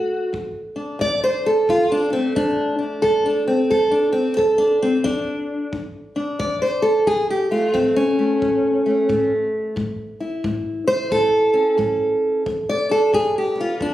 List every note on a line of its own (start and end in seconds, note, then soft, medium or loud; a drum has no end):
0.00 0.28 D2 medium
0.00 0.34 F#4 loud
0.33 0.96 D2 medium
0.33 kick medium
0.76 1.92 D4 medium
0.99 1.63 D2 medium
0.99 1.23 D5 loud
0.99 kick medium
1.24 1.46 C5 medium
1.46 1.69 A4 medium
1.68 2.31 D2 medium
1.68 1.92 F4 loud
1.68 kick medium
1.92 2.12 D4 loud
2.10 4.58 A3 soft
2.10 2.36 C4 medium
2.35 2.98 D2 medium
2.35 2.77 D4 loud
2.35 kick medium
2.79 3.25 D4 soft
3.02 3.66 D2 medium
3.02 3.25 A4 loud
3.02 kick medium
3.26 3.47 D4 medium
3.48 3.71 C4 medium
3.70 4.33 D2 medium
3.70 3.93 A4 loud
3.70 kick medium
3.91 4.12 D4 medium
4.12 4.36 C4 loud
4.37 5.01 D2 medium
4.37 4.60 A4 loud
4.37 kick medium
4.58 4.82 D4 loud
4.82 5.05 C4 loud
5.04 5.68 D2 medium
5.04 5.72 D4 loud
5.04 kick medium
5.72 6.35 D2 medium
5.72 kick medium
6.16 7.05 D4 medium
6.39 7.03 D2 medium
6.39 6.61 D5 medium
6.39 kick medium
6.62 6.85 C5 medium
6.82 7.06 A4 medium
7.07 7.70 A2 medium
7.07 7.30 G#4 loud
7.07 kick medium
7.30 7.51 G4 medium
7.51 8.18 A3 soft
7.51 7.75 F4 medium
7.74 8.38 A2 medium
7.74 7.96 C4 loud
7.74 kick medium
7.96 9.32 C#4 loud
8.19 8.85 A3 soft
8.42 9.05 A2 medium
8.42 kick medium
8.86 9.09 A3 soft
9.09 9.72 A2 medium
9.09 9.74 A3 medium
9.09 kick medium
9.76 10.39 A2 medium
9.76 kick medium
10.20 10.86 E4 soft
10.44 11.07 A2 medium
10.44 kick medium
10.88 12.44 E4 soft
10.88 11.11 C5 loud
11.11 11.74 A2 medium
11.11 11.77 A4 loud
11.11 kick medium
11.54 12.43 C#4 medium
11.78 12.41 A2 medium
11.78 12.43 A4 medium
11.78 kick medium
12.46 13.09 G2 medium
12.46 kick medium
12.69 12.91 D5 loud
12.89 13.59 D4 medium
12.89 13.14 A4 medium
13.13 13.76 G2 medium
13.13 13.36 G#4 loud
13.13 kick medium
13.38 13.60 G4 medium
13.56 13.94 B3 soft
13.61 13.82 F4 loud
13.80 13.94 G2 medium
13.80 13.94 D4 medium
13.80 kick medium